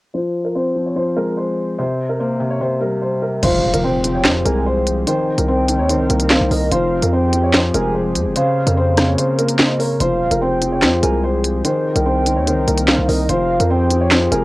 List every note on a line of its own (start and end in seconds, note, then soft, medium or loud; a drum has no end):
0.14 0.74 F3 medium
0.14 0.43 C5 loud
0.45 0.54 A#4 medium
0.55 1.58 C4 medium
0.55 0.84 C5 medium
0.76 0.94 F3 medium
0.86 0.96 C#5 medium
0.96 1.78 F3 medium
0.96 1.15 C5 medium
1.17 1.79 G#3 medium
1.17 1.36 A#4 medium
1.37 1.76 C5 medium
1.79 2.38 C3 medium
1.79 2.07 C5 medium
2.09 2.19 A#4 medium
2.19 3.23 A#3 medium
2.19 2.48 C5 medium
2.40 2.59 C3 medium
2.50 2.60 C#5 medium
2.61 3.43 C3 medium
2.61 2.80 C5 medium
2.81 3.43 G3 medium
2.81 3.00 A#4 medium
3.02 3.21 C5 medium
3.22 3.41 A#4 medium
3.43 3.65 F1 loud
3.43 5.05 F3 medium
3.43 4.03 F3 loud
3.43 5.06 C4 medium
3.43 5.05 G4 medium
3.43 5.05 G#4 medium
3.43 3.72 C5 loud
3.43 3.81 F5 loud
3.43 closed hi-hat medium
3.43 crash loud
3.43 impact medium
3.63 3.73 D#1 loud
3.74 4.26 F1 loud
3.74 3.83 A#4 medium
3.74 closed hi-hat medium
3.84 4.87 C4 medium
3.84 4.13 C5 medium
3.84 4.42 G5 loud
4.04 4.23 F3 medium
4.04 closed hi-hat medium
4.15 4.24 C#5 medium
4.24 4.44 F2 loud
4.24 5.07 F3 medium
4.24 4.44 C5 medium
4.24 snare loud
4.24 clap medium
4.24 closed hi-hat medium
4.45 5.05 C2 loud
4.45 5.07 G#3 medium
4.45 4.65 A#4 medium
4.45 4.65 G#5 medium
4.45 closed hi-hat medium
4.66 5.05 C5 medium
4.87 closed hi-hat medium
5.07 6.70 C3 medium
5.07 5.68 D#3 medium
5.07 8.33 C4 medium
5.07 6.70 D#4 medium
5.07 6.70 A#4 loud
5.07 5.36 C5 medium
5.07 6.26 G5 loud
5.07 closed hi-hat medium
5.38 5.81 C2 loud
5.38 5.48 A#4 medium
5.38 closed hi-hat medium
5.48 6.51 C4 medium
5.48 5.77 C5 medium
5.69 5.88 D#3 medium
5.69 closed hi-hat medium
5.79 5.96 D#2 loud
5.79 5.89 C#5 medium
5.89 6.72 D#3 medium
5.89 6.09 C5 medium
5.89 closed hi-hat medium
5.95 6.09 C2 loud
6.10 6.39 C2 loud
6.10 6.72 A#3 medium
6.10 6.29 A#4 medium
6.10 closed hi-hat medium
6.20 closed hi-hat medium
6.30 6.50 C5 medium
6.30 6.50 F5 medium
6.30 snare loud
6.30 clap loud
6.41 6.50 C2 loud
6.51 6.71 C2 loud
6.51 6.70 A#4 medium
6.51 6.70 D#5 medium
6.51 open hi-hat medium
6.72 7.01 F1 loud
6.72 8.34 F3 medium
6.72 7.32 F3 loud
6.72 8.34 G4 medium
6.72 8.34 G#4 medium
6.72 7.00 C5 loud
6.72 7.10 F5 loud
6.72 closed hi-hat medium
7.02 7.71 F2 loud
7.02 7.12 A#4 medium
7.02 closed hi-hat medium
7.13 8.16 C4 medium
7.13 7.42 C5 medium
7.13 7.71 G5 loud
7.33 7.52 F3 medium
7.33 closed hi-hat medium
7.43 7.53 C#5 medium
7.53 8.36 F3 medium
7.53 7.73 C5 medium
7.53 snare loud
7.53 clap loud
7.53 closed hi-hat medium
7.74 8.17 F1 loud
7.74 8.36 G#3 medium
7.74 7.93 A#4 loud
7.74 7.94 G#5 medium
7.74 closed hi-hat medium
7.95 8.33 C5 medium
8.15 8.27 F2 loud
8.15 closed hi-hat medium
8.26 8.35 F1 loud
8.36 8.96 C#3 loud
8.36 9.99 A#3 medium
8.36 9.99 F4 medium
8.36 9.99 A#4 loud
8.36 9.99 C5 medium
8.36 8.65 C5 loud
8.36 9.14 F5 loud
8.36 closed hi-hat medium
8.67 9.16 F2 loud
8.67 8.76 A#4 medium
8.67 closed hi-hat medium
8.77 9.80 C4 medium
8.77 9.06 C5 medium
8.97 9.17 C#3 medium
8.97 cross-stick loud
8.97 snare medium
8.97 closed hi-hat medium
9.08 9.17 C#5 medium
9.18 10.00 C#3 medium
9.18 9.37 C5 medium
9.18 closed hi-hat medium
9.39 10.00 A#3 medium
9.39 9.58 A#4 medium
9.39 closed hi-hat medium
9.49 closed hi-hat medium
9.59 9.79 C5 medium
9.59 9.79 D#5 medium
9.59 snare loud
9.59 clap loud
9.80 9.99 A#4 medium
9.80 9.99 C#5 medium
9.80 open hi-hat medium
10.00 10.22 F1 loud
10.00 11.63 F3 medium
10.00 10.61 F3 medium
10.00 11.63 C4 medium
10.00 11.63 G4 medium
10.00 11.63 G#4 loud
10.00 10.29 C5 loud
10.00 10.39 F5 loud
10.00 closed hi-hat medium
10.21 10.31 D#1 loud
10.31 10.84 F1 loud
10.31 10.41 A#4 medium
10.31 closed hi-hat medium
10.41 11.44 C4 medium
10.41 10.70 C5 medium
10.41 10.99 G5 medium
10.62 10.81 F3 medium
10.62 closed hi-hat medium
10.72 10.82 C#5 medium
10.82 11.02 F2 loud
10.82 11.65 F3 medium
10.82 11.02 C5 medium
10.82 snare loud
10.82 clap medium
10.82 closed hi-hat medium
11.03 11.62 C2 loud
11.03 11.65 G#3 medium
11.03 11.22 A#4 medium
11.03 11.23 G#5 medium
11.03 closed hi-hat medium
11.24 11.62 C5 medium
11.44 closed hi-hat medium
11.64 13.27 C3 medium
11.64 12.25 D#3 medium
11.64 14.44 C4 medium
11.64 13.27 D#4 medium
11.64 13.27 A#4 loud
11.64 11.94 C5 loud
11.64 12.84 G5 loud
11.64 closed hi-hat medium
11.96 12.38 C2 loud
11.96 12.05 A#4 medium
11.96 closed hi-hat medium
12.06 13.08 C4 medium
12.06 12.35 C5 medium
12.26 12.46 D#3 medium
12.26 closed hi-hat medium
12.37 12.54 D#2 loud
12.37 12.46 C#5 medium
12.47 13.29 D#3 medium
12.47 12.66 C5 medium
12.47 closed hi-hat medium
12.52 12.67 C2 medium
12.67 12.97 C2 loud
12.67 13.29 A#3 medium
12.67 12.87 A#4 medium
12.67 closed hi-hat medium
12.77 closed hi-hat medium
12.88 13.07 C5 medium
12.88 13.08 F5 medium
12.88 snare loud
12.88 clap loud
12.98 13.08 C2 loud
13.08 13.28 C2 loud
13.08 13.28 A#4 medium
13.08 13.28 D#5 medium
13.08 open hi-hat medium
13.29 13.59 F1 loud
13.29 14.44 F3 medium
13.29 13.89 F3 loud
13.29 14.44 G4 medium
13.29 14.44 G#4 loud
13.29 13.58 C5 loud
13.29 13.68 F5 loud
13.29 closed hi-hat medium
13.60 14.29 F2 loud
13.60 13.70 A#4 medium
13.60 closed hi-hat medium
13.70 14.44 C4 medium
13.70 13.99 C5 medium
13.70 14.28 G5 medium
13.90 14.10 F3 medium
13.90 closed hi-hat medium
14.01 14.11 C#5 medium
14.11 14.44 F3 medium
14.11 14.30 C5 medium
14.11 snare loud
14.11 clap medium
14.11 closed hi-hat medium
14.32 14.44 F1 loud
14.32 14.44 G#3 medium
14.32 14.44 A#4 loud
14.32 14.44 G#5 medium
14.32 closed hi-hat medium